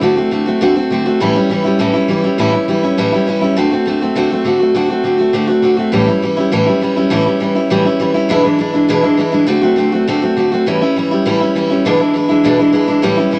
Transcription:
0.01 D3 A3 C4 F#4
0.16 A3 C4 F#4
0.31 D3 A3 C4 F#4
0.46 A3 C4 F#4
0.61 D3 A3 C4 F#4
0.76 A3 C4 F#4
0.90 D3 A3 C4 F#4
1.06 A3 C4 F#4
1.20 A2 E3 G3 C#4 E4
1.35 G3 C#4 E4
1.50 E3 G3 C#4 E4
1.64 G3 C#4 E4
1.79 A2 E3 G3 C#4 E4
1.93 G3 C#4 E4
2.08 E3 G3 C#4 E4
2.24 G3 C#4 E4
2.38 A2 E3 G3 C#4 E4
2.53 G3 C#4 E4
2.68 E3 G3 C#4 E4
2.83 G3 C#4 E4
2.98 A2 E3 G3 C#4 E4
3.12 G3 C#4 E4
3.27 E3 G3 C#4 E4
3.41 G3 C#4 E4
3.56 D3 A3 C4 F#4
3.71 A3 C4 F#4
3.86 D3 A3 C4 F#4
4.01 A3 C4 F#4
4.16 D3 A3 C4 F#4
4.31 A3 C4 F#4
4.45 D3 A3 C4 F#4
4.59 A3 C4 F#4
4.75 D3 A3 C4 F#4
4.90 A3 C4 F#4
5.04 D3 A3 C4 F#4
5.18 A3 C4 F#4
5.33 D3 A3 C4 F#4
5.47 A3 C4 F#4
5.62 D3 A3 C4 F#4
5.77 A3 C4 F#4
5.92 A2 E3 G3 C#4 E4
6.07 G3 C#4 E4
6.22 E3 G3 C#4 E4
6.37 G3 C#4 E4
6.52 A2 E3 G3 C#4 E4
6.66 G3 C#4 E4
6.81 E3 G3 C#4 E4
6.96 G3 C#4 E4
7.10 A2 E3 G3 C#4 E4
7.25 G3 C#4 E4
7.40 E3 G3 C#4 E4
7.55 G3 C#4 E4
7.70 A2 E3 G3 C#4 E4
7.85 G3 C#4 E4
8.00 E3 G3 C#4 E4
8.14 G3 C#4 E4
8.29 E2 B2 E3 G#3 D4 E4
8.43 E3 G#3 D4 E4
8.59 E3 G#3 D4 E4
8.73 E3 G#3 D4 E4
8.89 E2 B2 E3 G#3 D4 E4
9.03 E3 G#3 D4 E4
9.17 E3 G#3 D4 E4
9.32 E3 G#3 D4 E4
9.47 D3 A3 C4 F#4
9.61 A3 C4 F#4
9.76 D3 A3 C4 F#4
9.92 A3 C4 F#4
10.08 D3 A3 C4 F#4
10.22 A3 C4 F#4
10.37 D3 A3 C4 F#4
10.52 A3 C4 F#4
10.66 A2 E3 G3 C#4 E4
10.82 G3 C#4 E4
10.96 E3 G3 C#4 E4
11.11 G3 C#4 E4
11.25 A2 E3 G3 C#4 E4
11.40 G3 C#4 E4
11.55 E3 G3 C#4 E4
11.70 G3 C#4 E4
11.85 E2 B2 E3 G#3 D4 E4
12.00 E3 G#3 D4 E4
12.14 E3 G#3 D4 E4
12.29 E3 G#3 D4 E4
12.44 E2 B2 E3 G#3 D4 E4
12.59 E3 G#3 D4 E4
12.73 E3 G#3 D4 E4
12.87 E3 G#3 D4 E4
13.02 A2 E3 G3 C#4 E4
13.17 G3 C#4 E4
13.31 E3 G3 C#4 E4

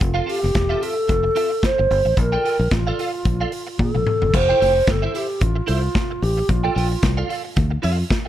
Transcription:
0.01 F1 F4, kick, closed hi-hat
0.14 C4 F4 A4 F5
0.26 C4 F4 G4 A4 F5, open hi-hat
0.42 F1, muted clean electric guitar stroke, snare
0.54 E1, muted clean electric guitar stroke, kick, snare, closed hi-hat
0.69 C4 F4 A4 E5
0.81 C4 F4 A4 E5, open hi-hat
0.96 muted clean electric guitar stroke
1.08 F1, muted clean electric guitar stroke, kick, closed hi-hat
1.23 muted clean electric guitar stroke
1.35 C4 F4 A4 E5, open hi-hat
1.51 muted clean electric guitar stroke
1.62 C5, muted clean electric guitar stroke, kick, snare, closed hi-hat
1.78 G1, muted clean electric guitar stroke
1.91 G1, open hi-hat
2.05 A1, muted clean electric guitar stroke
2.17 A#1 A#4, muted clean electric guitar stroke, kick, closed hi-hat
2.32 F4 A4 D5 G5
2.44 F4 A4 D5 G5, open hi-hat
2.59 A#1, muted clean electric guitar stroke
2.71 A1 F4, muted clean electric guitar stroke, kick, snare, closed hi-hat
2.87 F4 A4 D5 F5
2.99 F4 A4 D5 F5, open hi-hat
3.14 muted clean electric guitar stroke
3.25 A#1, muted clean electric guitar stroke, kick, closed hi-hat
3.41 F4 A4 D5 F5
3.52 muted clean electric guitar stroke, open hi-hat
3.67 muted clean electric guitar stroke
3.79 A#2 A4, muted clean electric guitar stroke, kick, high tom
3.95 A#1, muted clean electric guitar stroke, mid tom
4.07 mid tom
4.22 G1, muted clean electric guitar stroke, floor tom
4.34 F1 C5, muted clean electric guitar stroke, kick, crash
4.49 E4 A4 C5 G5
4.60 F1 E4 A4 C5 G5, open hi-hat
4.76 muted clean electric guitar stroke
4.87 G1 A4, muted clean electric guitar stroke, kick, snare, closed hi-hat
5.02 E4 A4 C5 E5
5.14 E4 G4 A4 C5 E5, open hi-hat
5.28 muted clean electric guitar stroke
5.40 A1 F4, muted clean electric guitar stroke, kick, closed hi-hat
5.56 muted clean electric guitar stroke
5.67 C2 E4 F4 A4 C5 E5, open hi-hat
5.82 muted clean electric guitar stroke
5.94 muted clean electric guitar stroke, kick, snare, closed hi-hat
6.10 muted clean electric guitar stroke
6.22 A1 G4, open hi-hat
6.37 muted clean electric guitar stroke
6.49 A#1 F4, muted clean electric guitar stroke, kick, closed hi-hat
6.64 F4 A4 D5 G5
6.75 A#1 F4 A4 D5 G5, open hi-hat
6.91 muted clean electric guitar stroke
7.02 C2, muted clean electric guitar stroke, kick, snare, closed hi-hat
7.17 F4 A4 D5 F5
7.29 F4 A4 D5 F5, open hi-hat
7.44 muted clean electric guitar stroke
7.56 D2, muted clean electric guitar stroke, kick, closed hi-hat
7.70 muted clean electric guitar stroke
7.82 F2 F4 A4 D5 F5, open hi-hat
7.98 muted clean electric guitar stroke
8.10 muted clean electric guitar stroke, kick, snare, closed hi-hat
8.25 muted clean electric guitar stroke

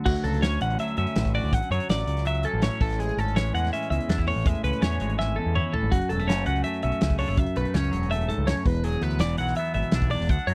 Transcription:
Already playing: D3 F#3
0.06 D2 F#4, kick, crash
0.16 closed hi-hat
0.24 C#2 F#3 A4, closed hi-hat
0.34 closed hi-hat
0.42 D2 C#4 C#5, snare, closed hi-hat
0.52 closed hi-hat
0.61 A1 D3 F#5, closed hi-hat
0.70 closed hi-hat
0.79 F#3 E5, closed hi-hat
0.88 closed hi-hat
0.97 F#2 C#4 E5, closed hi-hat
1.07 closed hi-hat
1.16 A1 A2, snare, closed hi-hat
1.25 kick, closed hi-hat
1.35 F#4 D5, open hi-hat
1.44 D2
1.53 A1 F#5, kick, closed hi-hat
1.71 F#2 F#3 C#5, closed hi-hat
1.80 closed hi-hat
1.89 A1 D5, snare, closed hi-hat
1.98 snare, closed hi-hat
2.07 C#2, closed hi-hat
2.17 snare, closed hi-hat
2.25 F#3 E5, closed hi-hat
2.34 closed hi-hat
2.43 C#4 A4, closed hi-hat
2.53 A1
2.62 A2 C#5, snare, closed hi-hat
2.80 A1 A2 A4, kick, open hi-hat
2.90 snare, closed hi-hat
2.99 G#3 G#4, closed hi-hat
3.17 G#1 C#4 A4, closed hi-hat
3.28 closed hi-hat
3.36 A1 E3 C#5, snare, closed hi-hat
3.54 E2 G#3 F#5, closed hi-hat
3.65 snare, closed hi-hat
3.73 C#4 E5, closed hi-hat
3.82 closed hi-hat
3.90 C#2 E2 E5, closed hi-hat
4.00 closed hi-hat
4.09 E2 D4, snare, closed hi-hat
4.18 E4, kick
4.27 A2 C#5, open hi-hat
4.36 A1
4.46 E2 G#3 E5, kick, closed hi-hat
4.64 C#2 C#4 B4, closed hi-hat
4.73 closed hi-hat
4.81 E2 E3 C#5, snare, closed hi-hat
5.00 G#1 G#3, closed hi-hat
5.10 closed hi-hat
5.19 C#4 E5, snare
5.36 E2 A4
5.46 E2
5.55 E4 C#5, mid tom
5.73 A2 A4, floor tom
5.83 G#1
5.92 F#1 F#2 F#4, kick, closed hi-hat
6.09 E1 F#3 A4, closed hi-hat
6.19 A3, closed hi-hat
6.28 F#1 C#4 C#5, snare, closed hi-hat
6.46 C#2 F#3 F#5, closed hi-hat
6.56 closed hi-hat
6.64 A3 E5, closed hi-hat
6.74 closed hi-hat
6.83 B1 C#4 E5, closed hi-hat
6.92 closed hi-hat
7.01 C#2 C#3, snare, closed hi-hat
7.10 kick
7.19 D4 C#5, open hi-hat
7.28 F#1 E4
7.37 C#2 F#2 E5, kick, closed hi-hat
7.46 closed hi-hat
7.56 B1 A3 B4, closed hi-hat
7.65 closed hi-hat
7.74 C#2 C#4 C#5, snare, closed hi-hat
7.84 closed hi-hat
7.91 E1 F#3, closed hi-hat
8.03 closed hi-hat
8.11 A3 E5, closed hi-hat
8.21 closed hi-hat
8.29 G#2 A4, closed hi-hat
8.38 C#2
8.47 F#2 C#5, snare, closed hi-hat
8.57 closed hi-hat
8.65 E1 E2 B4, kick, open hi-hat
8.75 closed hi-hat
8.84 F#3 G#4, closed hi-hat
8.92 closed hi-hat
9.01 D2 B3 B4, closed hi-hat
9.10 closed hi-hat
9.19 E1 E3 D5, snare, closed hi-hat
9.38 B1 F#3 F#5, closed hi-hat
9.47 snare, closed hi-hat
9.55 B3 E5, closed hi-hat
9.65 closed hi-hat
9.74 G#1 B2 E5, closed hi-hat
9.83 closed hi-hat
9.91 B1 D4, snare, closed hi-hat
10.01 kick, closed hi-hat
10.10 E2 D5, open hi-hat
10.20 E1, snare
10.29 D2 F#5, kick, closed hi-hat
10.39 closed hi-hat
10.47 F#2 F#3 C#5, closed hi-hat

